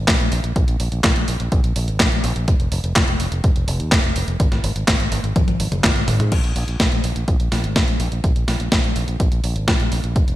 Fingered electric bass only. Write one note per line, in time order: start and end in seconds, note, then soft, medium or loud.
0.08 0.18 A#1 loud
0.20 0.30 A#1 medium
0.32 0.42 A#1 loud
0.44 0.54 A#1 medium
0.56 0.66 A#1 loud
0.68 0.78 A#1 medium
0.80 0.90 A#1 medium
0.92 1.02 A#1 medium
1.04 1.14 A#1 loud
1.16 1.26 A#1 medium
1.28 1.38 A#1 medium
1.40 1.50 A#1 medium
1.52 1.62 A#1 loud
1.64 1.74 A#1 medium
1.76 1.86 A#1 loud
1.88 1.98 G#1 medium
2.00 2.10 A#1 loud
2.12 2.22 A#1 medium
2.24 2.34 A#1 loud
2.36 2.46 A#1 medium
2.48 2.58 F1 loud
2.60 2.70 F1 medium
2.72 2.82 F1 loud
2.84 2.94 F1 medium
2.96 3.06 F1 loud
3.08 3.18 F1 medium
3.20 3.30 F1 loud
3.32 3.42 F1 medium
3.44 3.54 F1 loud
3.55 3.66 F1 medium
3.67 3.78 F1 loud
3.80 3.90 D#2 medium
3.92 4.02 F1 loud
4.04 4.14 F1 medium
4.16 4.26 F1 medium
4.28 4.38 F1 medium
4.40 4.50 G#1 loud
4.52 4.62 G#1 medium
4.64 4.74 G#1 medium
4.76 4.86 G#1 medium
4.88 4.98 G#1 loud
5.00 5.10 G#1 medium
5.12 5.22 G#1 medium
5.24 5.34 G#1 medium
5.36 5.46 G#1 loud
5.48 5.58 G#1 medium
5.60 5.70 G#1 loud
5.72 5.82 F#1 medium
5.84 5.94 G#1 loud
5.96 6.06 G#1 medium
6.08 6.18 G#1 loud
6.20 6.30 G#2 medium
6.32 6.42 A#1 loud
6.44 6.54 A#1 medium
6.56 6.66 A#1 medium
6.68 6.78 A#1 medium
6.80 6.90 A#1 loud
6.92 7.02 A#1 medium
7.04 7.14 A#1 medium
7.16 7.26 A#1 medium
7.28 7.38 A#1 loud
7.40 7.50 A#1 medium
7.52 7.62 A#1 medium
7.64 7.74 G#1 medium
7.76 7.86 A#1 loud
7.88 7.98 A#1 medium
8.00 8.10 A#1 medium
8.12 8.22 A#1 medium
8.24 8.34 A#1 loud
8.36 8.46 A#1 medium
8.48 8.58 A#1 medium
8.60 8.70 A#1 medium
8.72 8.82 A#1 medium
8.84 8.94 A#1 medium
8.96 9.06 A#1 medium
9.08 9.18 A#1 medium
9.20 9.30 A#1 loud
9.32 9.42 A#1 medium
9.44 9.54 A#1 medium
9.56 9.66 G#1 medium
9.68 9.78 A#1 loud
9.80 9.90 A#1 medium
9.91 10.02 A#1 medium
10.04 10.14 A#1 medium
10.16 10.26 F1 loud
10.28 10.36 F1 medium